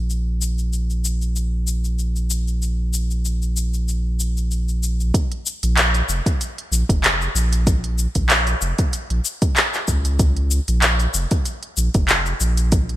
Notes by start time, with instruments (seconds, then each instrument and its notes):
Already playing: sub bass A#1
0.10 cabasa
0.41 cabasa
0.58 cabasa
0.73 cabasa
0.90 cabasa
1.05 cabasa
1.22 cabasa
1.36 cabasa
1.67 cabasa
1.84 cabasa
1.99 cabasa
2.16 cabasa
2.30 cabasa
2.48 cabasa
2.62 cabasa
2.93 cabasa
3.11 cabasa
3.25 cabasa
3.42 cabasa
3.56 cabasa
3.74 cabasa
3.88 cabasa
4.20 cabasa
4.37 cabasa
4.51 cabasa
4.69 cabasa
4.83 cabasa
5.00 cabasa
5.14 kick, closed hi-hat, cabasa
5.32 closed hi-hat
5.46 cabasa
5.63 sub bass A#1, closed hi-hat, cabasa
5.77 clap, closed hi-hat, cabasa
5.94 closed hi-hat, cabasa
6.09 sub bass F1, cabasa
6.26 kick, closed hi-hat, cabasa
6.41 closed hi-hat, cabasa
6.58 closed hi-hat
6.72 sub bass A#1, cabasa
6.89 sub bass F1, kick, closed hi-hat, cabasa
7.04 clap, closed hi-hat, cabasa
7.21 cabasa
7.35 sub bass A#1, cabasa
7.53 closed hi-hat, cabasa
7.67 kick, closed hi-hat, cabasa
7.84 closed hi-hat
7.98 cabasa
8.15 sub bass A#1, kick, closed hi-hat, cabasa
8.30 clap, closed hi-hat, cabasa
8.47 closed hi-hat, cabasa
8.61 sub bass F1, cabasa
8.79 kick, closed hi-hat, cabasa
8.93 closed hi-hat, cabasa
9.10 sub bass A#1, closed hi-hat
9.25 cabasa
9.42 kick, closed hi-hat, cabasa
9.57 clap, closed hi-hat, cabasa
9.74 clap, cabasa
9.88 sub bass C#2, kick, cabasa
10.05 closed hi-hat, cabasa
10.19 kick, closed hi-hat, cabasa
10.37 closed hi-hat
10.51 cabasa
10.68 sub bass A#1, closed hi-hat, cabasa
10.82 clap, closed hi-hat, cabasa
11.00 closed hi-hat, cabasa
11.14 sub bass F1, cabasa
11.31 kick, closed hi-hat, cabasa
11.46 closed hi-hat, cabasa
11.63 closed hi-hat
11.77 sub bass A#1, cabasa
11.94 sub bass F1, kick, closed hi-hat, cabasa
12.09 clap, closed hi-hat, cabasa
12.26 cabasa
12.40 sub bass A#1, cabasa
12.57 closed hi-hat, cabasa
12.72 kick, closed hi-hat, cabasa
12.89 closed hi-hat